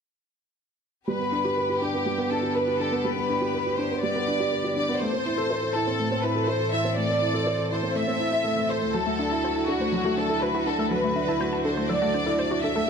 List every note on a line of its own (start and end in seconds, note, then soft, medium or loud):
1.07 4.97 G2 medium
1.07 4.97 D3 medium
1.07 1.19 G3 medium
1.07 4.97 B3 medium
1.07 4.97 G4 medium
1.07 1.81 B4 medium
1.20 1.31 B3 medium
1.32 1.44 D4 medium
1.45 1.56 G4 medium
1.57 1.69 B4 medium
1.70 1.81 G4 medium
1.81 1.89 D4 medium
1.81 2.30 G4 medium
1.94 2.05 B3 medium
2.06 2.18 G3 medium
2.18 2.30 B3 medium
2.30 2.42 D4 medium
2.30 2.55 A4 medium
2.43 2.54 G4 medium
2.55 2.80 B4 medium
2.55 2.67 B4 medium
2.68 2.79 G4 medium
2.80 2.91 D4 medium
2.80 3.04 A4 medium
2.92 3.04 B3 medium
3.03 3.16 G3 medium
3.03 3.78 B4 medium
3.17 3.28 B3 medium
3.29 3.41 D4 medium
3.42 3.53 G4 medium
3.54 3.65 B4 medium
3.66 3.78 G4 medium
3.77 3.85 D4 medium
3.77 4.02 C5 medium
3.91 4.02 B3 medium
4.01 4.15 G3 medium
4.01 4.72 D5 medium
4.16 4.27 B3 medium
4.28 4.39 D4 medium
4.40 4.51 G4 medium
4.52 4.64 B4 medium
4.64 4.76 G4 medium
4.75 4.88 D4 medium
4.75 4.98 D5 medium
4.89 5.01 B3 medium
4.99 8.90 A2 medium
4.99 8.90 E3 medium
4.99 5.13 A3 medium
4.99 8.90 C4 medium
4.99 8.90 A4 medium
4.99 5.74 C5 medium
5.14 5.25 C4 medium
5.26 5.37 E4 medium
5.38 5.50 A4 medium
5.50 5.62 C5 medium
5.62 5.74 A4 medium
5.73 5.82 E4 medium
5.73 6.23 A4 medium
5.87 5.99 C4 medium
5.99 6.11 A3 medium
6.12 6.23 C4 medium
6.23 6.35 E4 medium
6.23 6.48 B4 medium
6.36 6.48 A4 medium
6.47 6.72 C5 medium
6.47 6.60 C5 medium
6.60 6.72 A4 medium
6.72 6.85 E4 medium
6.72 6.96 E5 medium
6.85 6.97 C4 medium
6.97 7.09 A3 medium
6.97 7.67 D5 medium
7.09 7.21 C4 medium
7.22 7.34 E4 medium
7.34 7.46 A4 medium
7.46 7.58 C5 medium
7.58 7.71 A4 medium
7.71 7.78 E4 medium
7.71 7.96 C5 medium
7.83 7.95 C4 medium
7.96 8.08 A3 medium
7.96 8.70 E5 medium
8.07 8.20 C4 medium
8.20 8.32 E4 medium
8.32 8.40 E5 medium
8.44 8.55 A3 medium
8.56 8.69 A3 medium
8.69 8.81 A4 medium
8.69 8.94 C5 medium
8.82 8.94 A3 medium
8.93 12.84 D2 medium
8.93 12.84 D3 medium
8.93 9.06 F#3 medium
8.93 10.89 E4 medium
8.93 12.84 F#4 medium
8.93 9.68 A4 medium
8.93 8.99 A4 medium
9.06 9.18 A3 medium
9.06 9.11 A3 medium
9.19 9.31 D4 medium
9.19 9.26 E5 medium
9.31 9.43 E4 medium
9.31 9.36 A5 medium
9.43 9.55 F#4 medium
9.43 9.51 C5 medium
9.56 9.68 E4 medium
9.56 9.60 A5 medium
9.67 9.75 D4 medium
9.67 10.17 F#4 medium
9.67 9.72 A4 medium
9.80 9.92 A3 medium
9.80 9.91 C5 medium
9.92 10.04 F#3 medium
9.92 9.97 A4 medium
10.04 10.16 A3 medium
10.04 10.15 F#4 loud
10.17 10.29 D4 medium
10.17 10.42 A4 medium
10.17 10.24 C5 medium
10.30 10.41 E4 medium
10.30 10.40 A4 medium
10.41 10.54 F#4 medium
10.41 10.66 B4 medium
10.41 10.49 C5 medium
10.54 10.66 E4 medium
10.54 10.65 F#4 medium
10.66 10.78 D4 medium
10.66 10.91 A4 medium
10.66 10.71 A4 medium
10.79 10.90 A3 medium
10.79 10.89 A4 medium
10.90 11.03 F#3 medium
10.90 12.86 D4 medium
10.90 10.95 A4 medium
10.90 11.60 B4 medium
11.03 11.15 A3 medium
11.03 11.08 A3 medium
11.15 11.27 D4 medium
11.15 11.23 E5 medium
11.27 11.39 E4 medium
11.27 11.32 A5 medium
11.40 11.52 F#4 medium
11.40 11.47 C5 medium
11.52 11.64 E4 medium
11.52 11.57 A5 medium
11.64 11.72 D4 medium
11.64 11.69 A4 medium
11.64 11.89 C5 medium
11.77 11.89 A3 medium
11.77 11.87 C5 medium
11.89 12.01 F#3 medium
11.89 11.93 A4 medium
11.89 12.63 D5 medium
12.02 12.13 A3 medium
12.02 12.12 F#4 loud
12.14 12.26 D4 medium
12.14 12.21 C5 medium
12.26 12.38 E4 medium
12.26 12.36 A4 medium
12.38 12.50 F#4 medium
12.38 12.46 C5 medium
12.51 12.63 E4 medium
12.51 12.61 F#4 medium
12.63 12.75 D4 medium
12.63 12.68 A4 medium
12.63 12.90 E5 medium
12.76 12.87 A3 medium
12.76 12.86 A4 medium